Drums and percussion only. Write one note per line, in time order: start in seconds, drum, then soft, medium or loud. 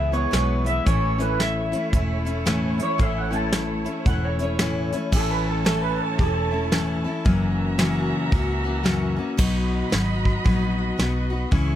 0.13 closed hi-hat medium
0.33 snare loud
0.33 closed hi-hat medium
0.66 closed hi-hat medium
0.87 kick loud
0.87 closed hi-hat medium
1.20 closed hi-hat medium
1.40 snare loud
1.40 closed hi-hat medium
1.73 closed hi-hat medium
1.93 kick loud
1.93 closed hi-hat medium
2.26 closed hi-hat medium
2.47 snare loud
2.47 closed hi-hat medium
2.80 closed hi-hat medium
2.99 kick loud
2.99 closed hi-hat medium
3.33 closed hi-hat medium
3.52 snare loud
3.52 closed hi-hat medium
3.86 closed hi-hat medium
4.06 kick loud
4.06 closed hi-hat medium
4.39 closed hi-hat medium
4.59 snare loud
4.59 closed hi-hat medium
4.92 closed hi-hat medium
5.12 kick loud
5.12 crash medium
5.66 snare loud
5.66 open hi-hat medium
6.19 kick loud
6.19 open hi-hat medium
6.72 snare loud
6.72 open hi-hat soft
7.25 kick loud
7.25 open hi-hat soft
7.79 snare loud
7.79 open hi-hat medium
8.32 kick loud
8.32 open hi-hat soft
8.86 snare loud
8.86 open hi-hat medium
9.38 kick loud
9.38 crash loud
9.92 snare loud
9.92 open hi-hat medium
10.25 kick medium
10.46 kick loud
10.46 open hi-hat medium
10.99 snare loud
10.99 open hi-hat medium
11.52 kick loud
11.52 open hi-hat soft